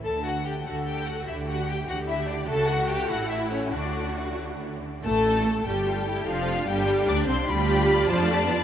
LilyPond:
<<
  \new Staff \with { instrumentName = "Violin section" } { \time 6/8 \key d \major \tempo 4. = 98 a''8 fis''8 g''8 fis''8 g''8 fis''8 | e''8 fis''8 g''8 fis''8 e''8 d''8 | a''8 fis''8 g''8 fis''8 e''8 cis''8 | d''4. r4. |
\key f \lydian a''4. g''4. | f''4 g''4 d'''8 c'''8 | b''4. a''4. | }
  \new Staff \with { instrumentName = "Violin section" } { \time 6/8 \key d \major << { a'8 fis'8 g'8 fis'8 g'8 fis'8 | e'8 fis'8 g'8 fis'8 e'8 d'8 | a'8 fis'8 g'8 fis'8 e'8 cis'8 | d'4. r4. |
\key f \lydian a'4. g'4. | f'4 g'4 d''8 c''8 | d''2. | } \\ { r2. | r2. | r2. | r2. |
r2. | r2. | d'4. d'4. | } >> }
  \new Staff \with { instrumentName = "Cello section" } { \time 6/8 \key d \major d4. d4. | d4. d4. | cis4. a,4. | d2~ d8 r8 |
\key f \lydian r4. g'8 f'8 e'8 | d'2. | g'4. f'8 g'8 f'8 | }
  \new Staff \with { instrumentName = "Viola section" } { \time 6/8 \key d \major << { r4. a'4. | g'2. | fis'4. e'4. | fis'2~ fis'16 r8. |
\key f \lydian a4. g4. | f4 g4 d'8 c'8 | f'2. | } \\ { r2. | r2. | r2. | r2. |
r2. | r2. | g4. f8 a8 b8 | } >> }
  \new Staff \with { instrumentName = "Double bass section" } { \clef bass \time 6/8 \key d \major d,4. d,4. | d,4. d,4. | cis,4. a,,4. | d,2~ d,8 r8 |
\key f \lydian a,,4. g,,4. | f,,4 g,,4 d,8 c,8 | d,4. f,4. | }
>>